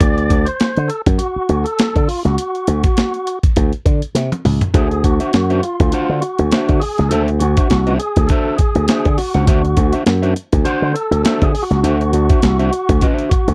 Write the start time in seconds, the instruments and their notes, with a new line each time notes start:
0.00 slap bass D2, tonewheel organ D5, kick, closed hi-hat
0.18 closed hi-hat
0.30 slap bass D2, kick, closed hi-hat
0.45 tonewheel organ C5, closed hi-hat
0.60 muted slap bass stroke, snare, closed hi-hat
0.77 slap bass D3, closed hi-hat
0.88 tonewheel organ A4, closed hi-hat
1.06 slap bass F#2, kick, closed hi-hat
1.18 tonewheel organ F#4, closed hi-hat
1.36 muted slap bass stroke
1.49 slap bass D2, closed hi-hat
1.64 tonewheel organ A4, closed hi-hat
1.79 snare, closed hi-hat
1.95 slap bass D3, kick, closed hi-hat
2.08 tonewheel organ F4, open hi-hat
2.25 slap bass C#2, tonewheel organ F#4, snare, closed hi-hat
2.38 closed hi-hat
2.55 closed hi-hat
2.67 slap bass D2, closed hi-hat
2.84 kick, closed hi-hat
2.97 snare, closed hi-hat
3.14 closed hi-hat
3.27 closed hi-hat
3.43 kick, closed hi-hat
3.56 slap bass D2, kick, closed hi-hat
3.73 closed hi-hat
3.85 slap bass D3, kick, closed hi-hat
4.02 closed hi-hat
4.15 slap bass C3, snare, closed hi-hat
4.32 closed hi-hat, high tom
4.45 slap bass C#2, mid tom, open hi-hat
4.61 closed hi-hat, floor tom
4.74 slap bass D2, clean electric guitar D4 F#4 C5 E5, tonewheel organ G#4, kick, closed hi-hat
4.91 muted clean electric guitar stroke, closed hi-hat
5.04 slap bass D2, tonewheel organ F#4, muted clean electric guitar stroke, kick, closed hi-hat
5.20 clean electric guitar D4 F#4 C5 E5, closed hi-hat
5.33 slap bass F#2, muted clean electric guitar stroke, snare, closed hi-hat
5.50 clean electric guitar D4 F#4 C5 E5, closed hi-hat
5.62 tonewheel organ F4, muted clean electric guitar stroke, closed hi-hat
5.80 slap bass D2, muted clean electric guitar stroke, kick, closed hi-hat
5.92 clean electric guitar D4 F#4 C5 F#5, muted slap bass stroke, closed hi-hat
6.09 slap bass D3
6.20 tonewheel organ F#4, muted clean electric guitar stroke, closed hi-hat
6.39 slap bass D2, muted clean electric guitar stroke, closed hi-hat
6.51 clean electric guitar D4 F#4 C5 E5, snare, closed hi-hat
6.69 slap bass D3, kick, closed hi-hat
6.80 tonewheel organ G#4, muted clean electric guitar stroke, open hi-hat
6.98 slap bass C#2, muted clean electric guitar stroke, snare, closed hi-hat
7.09 slap bass D2, clean electric guitar D4 F#4 C5 E5, tonewheel organ A4, closed hi-hat
7.28 closed hi-hat
7.39 slap bass D2, tonewheel organ F#4, muted clean electric guitar stroke, closed hi-hat
7.57 clean electric guitar D4 F#4 C5 E5, kick, closed hi-hat
7.70 slap bass C2, snare, closed hi-hat
7.87 clean electric guitar D4 F#4 C5 E5, closed hi-hat
7.99 tonewheel organ G#4, closed hi-hat
8.16 slap bass D2, muted clean electric guitar stroke, kick, closed hi-hat
8.27 clean electric guitar D4 F#4 C5, tonewheel organ A4, kick, closed hi-hat
8.31 clean electric guitar E5
8.57 tonewheel organ G#4, muted slap bass stroke, muted clean electric guitar stroke, kick, closed hi-hat
8.75 slap bass D2, muted clean electric guitar stroke, closed hi-hat
8.88 clean electric guitar D4 F#4 C5 E5, snare, closed hi-hat
9.05 slap bass D3, kick, closed hi-hat
9.17 tonewheel organ F#4, muted clean electric guitar stroke, open hi-hat
9.34 slap bass C#2, clean electric guitar D4 F#4 C5 F#5, snare, closed hi-hat
9.47 slap bass D2, clean electric guitar D4 F#4 C5 E5, kick, closed hi-hat
9.64 muted clean electric guitar stroke, closed hi-hat
9.77 slap bass D2, muted clean electric guitar stroke, kick, closed hi-hat
9.93 clean electric guitar D4 F#4 C5 E5, closed hi-hat
10.06 slap bass F#2, muted clean electric guitar stroke, snare, closed hi-hat
10.22 clean electric guitar D4 F#4 C5 E5, closed hi-hat
10.36 muted clean electric guitar stroke, closed hi-hat
10.52 slap bass D2, muted clean electric guitar stroke, kick, closed hi-hat
10.65 clean electric guitar D4 F#4 C5 F#5, tonewheel organ C5, muted slap bass stroke, closed hi-hat
10.82 slap bass D3
10.94 tonewheel organ A4, closed hi-hat
11.11 slap bass D2, muted clean electric guitar stroke, closed hi-hat
11.23 clean electric guitar D4 F#4 C5 E5, tonewheel organ A4, snare, closed hi-hat
11.42 slap bass D3, tonewheel organ G#4, kick, closed hi-hat
11.54 muted clean electric guitar stroke, open hi-hat
11.62 tonewheel organ F#4
11.70 slap bass C#2, muted clean electric guitar stroke, snare, closed hi-hat
11.83 slap bass D2, clean electric guitar D4 F#4 C5 E5, closed hi-hat
12.01 closed hi-hat
12.13 slap bass D2, muted clean electric guitar stroke, closed hi-hat
12.29 clean electric guitar D4 F#4 C5 E5, kick, closed hi-hat
12.42 slap bass C2, snare, closed hi-hat
12.59 clean electric guitar D4 F#4 C5 E5, closed hi-hat
12.73 muted clean electric guitar stroke, closed hi-hat
12.89 slap bass D2, muted clean electric guitar stroke, kick, closed hi-hat
13.01 clean electric guitar C#4 F4 B4 D#5, kick, closed hi-hat
13.13 clean electric guitar D4 F#4 C5 E5
13.19 closed hi-hat
13.29 tonewheel organ F#4, muted slap bass stroke, kick, closed hi-hat
13.48 slap bass D2, muted clean electric guitar stroke, closed hi-hat